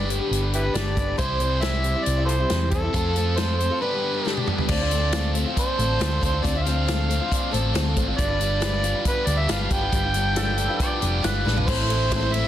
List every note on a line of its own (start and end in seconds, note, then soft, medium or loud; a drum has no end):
0.00 0.19 G1 loud
0.00 1.17 G2 medium
0.00 1.17 D3 medium
0.00 1.18 G3 medium
0.00 1.18 B3 medium
0.00 1.18 D4 medium
0.00 1.19 G4 medium
0.08 0.20 G3 medium
0.08 0.20 D4 medium
0.08 0.19 G4 medium
0.08 0.18 B4 medium
0.08 closed hi-hat medium
0.19 0.42 D4 soft
0.19 0.41 G4 medium
0.19 0.40 B4 medium
0.31 0.68 G1 medium
0.31 closed hi-hat medium
0.41 0.64 D4 soft
0.41 0.64 G4 soft
0.41 0.62 B4 soft
0.53 0.63 E4 medium
0.53 0.61 G4 medium
0.53 0.77 B4 medium
0.53 closed hi-hat medium
0.63 0.74 D4 soft
0.63 0.75 G4 soft
0.63 0.75 B4 soft
0.74 1.12 G1 medium
0.74 0.95 G3 medium
0.74 0.95 D4 medium
0.74 0.96 G4 medium
0.74 0.96 B4 medium
0.74 1.17 D5 medium
0.74 snare loud
0.74 closed hi-hat medium
0.96 1.07 G3 medium
0.96 1.08 D4 medium
0.96 1.07 G4 medium
0.96 1.05 B4 medium
0.96 kick medium
0.96 closed hi-hat medium
1.06 1.18 D4 soft
1.06 1.18 G4 soft
1.06 1.18 B4 medium
1.17 1.93 C2 loud
1.17 1.40 C3 medium
1.17 1.40 E3 medium
1.17 1.37 G3 medium
1.17 1.38 C4 medium
1.17 1.39 E4 medium
1.17 2.94 G4 medium
1.17 1.63 C5 medium
1.17 1.40 C5 medium
1.17 kick medium
1.17 closed hi-hat medium
1.38 1.60 G3 medium
1.38 1.61 C4 medium
1.38 1.61 E4 medium
1.38 1.61 C5 medium
1.38 closed hi-hat medium
1.61 1.84 C3 medium
1.61 1.84 E3 medium
1.61 1.81 G3 medium
1.61 1.82 C4 medium
1.61 1.83 E4 medium
1.61 1.84 C5 medium
1.61 2.05 E5 loud
1.61 snare loud
1.61 closed hi-hat medium
1.83 1.95 G3 medium
1.83 1.94 C4 medium
1.83 1.94 E4 medium
1.83 1.93 C5 medium
1.83 closed hi-hat medium
1.94 2.18 G3 soft
1.94 2.17 C4 soft
1.94 2.16 E4 soft
1.94 2.15 C5 medium
2.04 2.44 C2 medium
2.04 2.25 D5 loud
2.04 closed hi-hat medium
2.16 2.39 G3 soft
2.16 2.38 C4 soft
2.16 2.38 E4 soft
2.16 2.37 C5 medium
2.25 2.33 F4 medium
2.25 2.34 A4 medium
2.25 2.67 C5 medium
2.25 closed hi-hat medium
2.38 2.49 G3 soft
2.38 2.50 C4 soft
2.38 2.50 E4 soft
2.38 2.50 C5 soft
2.49 2.88 E2 medium
2.49 2.72 C3 medium
2.49 2.72 E3 medium
2.49 2.70 G3 medium
2.49 2.71 C4 medium
2.49 2.72 E4 medium
2.49 2.72 C5 medium
2.49 snare loud
2.49 closed hi-hat medium
2.70 2.83 G3 medium
2.70 2.82 C4 medium
2.70 2.82 E4 medium
2.70 3.39 A4 medium
2.70 2.81 C5 medium
2.70 kick medium
2.70 closed hi-hat medium
2.82 2.93 G3 soft
2.82 2.93 C4 soft
2.82 2.94 E4 soft
2.82 2.94 C5 medium
2.94 3.68 F2 medium
2.94 3.16 F3 medium
2.94 3.14 A3 medium
2.94 3.15 C4 medium
2.94 3.16 F4 medium
2.94 3.16 A4 medium
2.94 kick loud
2.94 closed hi-hat medium
3.16 3.37 A3 medium
3.16 3.38 C4 medium
3.16 3.37 F4 medium
3.16 3.38 A4 medium
3.16 closed hi-hat medium
3.37 3.60 F3 medium
3.37 3.58 A3 medium
3.37 3.59 C4 medium
3.37 3.60 F4 medium
3.37 3.60 A4 medium
3.37 3.57 C5 medium
3.37 snare loud
3.37 closed hi-hat medium
3.58 3.70 A3 medium
3.58 3.71 C4 medium
3.58 3.70 F4 medium
3.58 3.69 A4 medium
3.58 3.79 C5 medium
3.58 closed hi-hat medium
3.70 3.81 C4 soft
3.70 3.82 F4 soft
3.70 3.81 A4 medium
3.81 4.67 G2 medium
3.81 4.67 D3 medium
3.81 3.92 G3 medium
3.81 4.68 B3 medium
3.81 3.93 D4 medium
3.81 3.92 G4 medium
3.81 4.43 B4 medium
3.81 3.90 B4 medium
3.92 4.15 D4 soft
3.92 4.14 G4 soft
3.92 4.13 B4 soft
4.14 4.24 D4 soft
4.14 4.25 G4 soft
4.14 4.25 B4 soft
4.25 4.45 G3 medium
4.25 4.46 D4 medium
4.25 4.47 G4 medium
4.25 4.47 B4 medium
4.25 snare medium
4.37 high tom medium
4.46 4.58 G3 medium
4.46 4.58 D4 medium
4.46 4.58 G4 medium
4.46 4.57 B4 medium
4.46 mid tom medium
4.58 4.69 D4 soft
4.58 4.70 G4 soft
4.58 4.69 B4 medium
4.58 floor tom medium
4.68 5.43 D2 medium
4.68 4.80 D3 medium
4.68 4.80 A3 medium
4.68 4.80 C4 medium
4.68 4.80 F4 medium
4.68 4.79 C5 medium
4.68 5.30 D5 loud
4.68 kick loud
4.68 crash loud
4.80 4.91 C4 soft
4.80 4.91 F4 soft
4.80 4.91 C5 medium
4.91 5.12 A3 medium
4.91 5.13 C4 medium
4.91 5.13 F4 medium
4.91 5.14 C5 medium
4.91 closed hi-hat medium
5.12 5.35 D3 medium
5.12 6.88 F3 medium
5.12 5.33 A3 medium
5.12 5.34 C4 medium
5.12 5.35 F4 medium
5.12 5.35 C5 medium
5.12 snare loud
5.12 closed hi-hat medium
5.34 5.45 A3 medium
5.34 5.46 C4 medium
5.34 5.45 F4 medium
5.34 5.44 C5 medium
5.34 closed hi-hat medium
5.46 5.78 C4 soft
5.46 5.78 F4 soft
5.46 5.78 C5 soft
5.56 6.22 D4 medium
5.56 6.45 C5 medium
5.56 kick medium
5.56 closed hi-hat medium
5.78 5.97 A1 medium
5.78 5.98 A3 medium
5.78 5.99 C4 medium
5.78 5.99 F4 medium
5.78 6.87 A4 medium
5.78 6.00 C5 medium
5.78 closed hi-hat medium
5.99 6.19 D2 medium
5.99 6.21 D3 medium
5.99 6.19 A3 medium
5.99 6.20 C4 medium
5.99 6.20 F4 medium
5.99 6.21 C5 medium
5.99 snare loud
5.99 closed hi-hat medium
6.20 6.41 D2 medium
6.20 6.32 A3 medium
6.20 6.32 C4 medium
6.20 7.31 D4 medium
6.20 6.31 F4 medium
6.20 6.30 C5 medium
6.20 kick medium
6.20 closed hi-hat medium
6.31 6.42 C4 soft
6.31 6.42 F4 medium
6.31 6.43 C5 medium
6.43 7.18 D2 medium
6.43 6.54 D3 medium
6.43 6.54 A3 medium
6.43 6.54 C4 medium
6.43 6.53 F4 medium
6.43 6.52 C5 medium
6.43 6.59 D5 medium
6.43 kick loud
6.43 closed hi-hat medium
6.53 6.65 C4 soft
6.53 6.65 F4 soft
6.53 6.65 C5 medium
6.58 6.64 E5 medium
6.63 6.87 A3 medium
6.63 6.87 C4 medium
6.63 6.87 F4 medium
6.63 7.51 F5 loud
6.63 closed hi-hat medium
6.67 6.88 C5 medium
6.87 7.09 D3 medium
6.87 8.22 F3 medium
6.87 7.07 A3 medium
6.87 7.09 C4 medium
6.87 7.09 F4 medium
6.87 7.10 C5 medium
6.87 snare loud
6.87 closed hi-hat medium
7.08 7.20 A3 medium
7.08 7.20 C4 medium
7.08 7.19 F4 medium
7.08 7.18 C5 medium
7.08 closed hi-hat medium
7.19 7.51 C4 soft
7.19 7.51 F4 medium
7.19 7.52 C5 medium
7.31 7.97 D4 medium
7.31 kick medium
7.31 closed hi-hat loud
7.51 7.72 A1 medium
7.51 7.74 A3 medium
7.51 7.73 C4 medium
7.51 7.74 F4 medium
7.51 8.18 A4 medium
7.51 7.74 C5 medium
7.51 closed hi-hat medium
7.74 7.93 D2 medium
7.74 7.96 D3 medium
7.74 7.94 A3 medium
7.74 7.96 C4 loud
7.74 7.96 F4 loud
7.74 7.97 C5 loud
7.74 snare loud
7.74 closed hi-hat medium
7.96 8.15 G#1 medium
7.96 8.07 A3 medium
7.96 8.07 C4 medium
7.96 9.05 D4 medium
7.96 8.06 F4 medium
7.96 8.05 C5 medium
7.96 kick medium
7.96 closed hi-hat medium
8.06 8.18 C4 soft
8.06 8.18 F4 medium
8.06 8.18 C5 medium
8.17 8.92 G1 loud
8.17 9.28 G2 medium
8.17 8.29 G3 medium
8.17 8.29 D4 medium
8.17 8.28 F4 medium
8.17 8.27 B4 medium
8.17 9.01 D5 medium
8.17 kick loud
8.17 closed hi-hat medium
8.28 8.38 D4 soft
8.28 8.39 F4 medium
8.28 8.40 B4 medium
8.39 8.59 G3 medium
8.39 8.59 D4 medium
8.39 8.60 F4 medium
8.39 8.61 B4 medium
8.39 closed hi-hat medium
8.60 9.71 F3 medium
8.60 8.81 G3 medium
8.60 8.82 D4 medium
8.60 8.82 F4 medium
8.60 8.83 B4 medium
8.60 snare loud
8.60 closed hi-hat medium
8.82 8.94 G3 medium
8.82 8.94 D4 medium
8.82 8.93 F4 medium
8.82 8.92 B4 medium
8.82 closed hi-hat medium
8.93 9.27 D4 soft
8.93 9.27 F4 soft
8.93 9.27 B4 soft
9.05 9.71 B3 medium
9.05 9.28 B4 medium
9.05 kick medium
9.05 closed hi-hat medium
9.26 9.45 D2 medium
9.26 9.47 G3 medium
9.26 9.48 D4 medium
9.26 9.49 F4 medium
9.26 10.36 G4 medium
9.26 9.49 B4 medium
9.26 9.40 D5 medium
9.26 closed hi-hat medium
9.38 9.53 E5 medium
9.48 9.67 G1 medium
9.48 9.68 G3 medium
9.48 9.69 D4 medium
9.48 9.69 F4 medium
9.48 9.70 B4 loud
9.48 9.63 F5 loud
9.48 snare loud
9.48 closed hi-hat medium
9.64 9.74 F5 medium
9.69 9.89 G1 medium
9.69 9.81 G3 medium
9.69 10.79 B3 medium
9.69 9.81 D4 medium
9.69 9.81 F4 medium
9.69 9.80 B4 medium
9.69 11.24 G5 loud
9.69 kick medium
9.69 closed hi-hat medium
9.81 9.91 D4 soft
9.81 9.92 F4 medium
9.81 9.92 B4 medium
9.92 10.67 G1 loud
9.92 11.02 G2 medium
9.92 10.03 G3 medium
9.92 10.03 D4 medium
9.92 10.04 F4 medium
9.92 10.02 B4 medium
9.92 kick loud
9.92 closed hi-hat medium
10.04 10.14 D4 soft
10.04 10.15 F4 medium
10.04 10.14 B4 medium
10.14 10.35 G3 medium
10.14 10.35 D4 medium
10.14 10.35 F4 medium
10.14 10.36 B4 medium
10.14 closed hi-hat medium
10.36 11.45 F3 medium
10.36 10.56 G3 loud
10.36 10.57 D4 medium
10.36 10.58 F4 loud
10.36 10.79 A4 medium
10.36 10.58 B4 loud
10.36 snare loud
10.36 closed hi-hat loud
10.57 10.69 G3 medium
10.57 10.69 D4 medium
10.57 10.68 F4 medium
10.57 10.67 B4 medium
10.57 closed hi-hat medium
10.68 11.01 D4 medium
10.68 11.01 F4 medium
10.68 11.01 B4 medium
10.80 11.44 B3 medium
10.80 11.22 D5 medium
10.80 kick medium
10.80 closed hi-hat medium
11.01 11.21 F1 medium
11.01 11.21 G3 medium
11.01 11.23 D4 medium
11.01 11.23 F4 medium
11.01 11.67 G4 medium
11.01 11.24 B4 medium
11.01 closed hi-hat medium
11.23 11.43 G1 medium
11.23 11.43 G3 medium
11.23 11.44 D4 medium
11.23 11.45 F4 loud
11.23 11.56 B4 medium
11.23 11.46 B4 loud
11.23 snare loud
11.23 closed hi-hat medium
11.45 11.65 A1 medium
11.45 11.56 G3 medium
11.45 11.67 B3 medium
11.45 11.56 D4 medium
11.45 11.56 F4 medium
11.45 11.55 B4 medium
11.45 snare medium
11.56 11.68 D4 soft
11.56 11.67 F4 medium
11.56 11.67 B4 medium
11.56 floor tom medium
11.66 12.42 A1 loud
11.66 11.89 A2 medium
11.66 11.89 E3 medium
11.66 11.87 A3 medium
11.66 11.88 C4 medium
11.66 11.89 E4 medium
11.66 12.35 C5 loud
11.66 11.90 C5 medium
11.66 kick loud
11.66 crash loud
11.88 12.10 A3 medium
11.88 12.10 C4 medium
11.88 12.10 E4 medium
11.88 12.10 C5 medium
11.88 ride medium
12.10 12.21 A2 medium
12.10 12.21 E3 medium
12.10 12.22 A3 medium
12.10 12.22 C4 medium
12.10 12.21 E4 medium
12.10 12.20 C5 medium
12.10 kick medium
12.10 snare loud
12.10 ride loud
12.22 12.31 A3 soft
12.22 12.32 C4 soft
12.22 12.32 E4 medium
12.22 12.33 C5 medium
12.32 12.43 A3 medium
12.32 12.44 C4 medium
12.32 12.43 E4 medium
12.32 12.42 C5 medium
12.32 12.48 E5 loud
12.32 ride medium
12.43 12.48 E4 medium
12.43 12.48 C5 soft